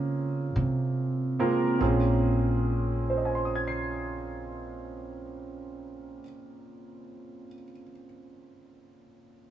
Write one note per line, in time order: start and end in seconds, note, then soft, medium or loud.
0.00 0.52 C#3 medium
0.00 1.39 A#3 medium
0.00 1.40 C4 medium
0.00 1.81 C#4 medium
0.00 1.40 F4 medium
0.00 1.82 G#4 medium
0.56 1.77 C3 medium
1.39 1.82 G#3 medium
1.39 1.79 A#3 medium
1.39 1.79 C4 medium
1.39 1.82 F4 medium
1.39 1.82 A#4 medium
1.79 6.17 A#1 medium
1.79 6.20 A#2 medium
1.79 6.21 A#3 medium
1.79 6.22 C4 medium
1.79 6.22 C#4 medium
1.79 6.23 G#4 medium
3.10 7.46 C5 soft
3.17 7.54 D#5 soft
3.25 7.62 G#5 soft
3.35 7.72 C6 soft
3.45 7.82 D#6 soft
3.55 7.92 G#6 soft
3.68 8.04 C7 soft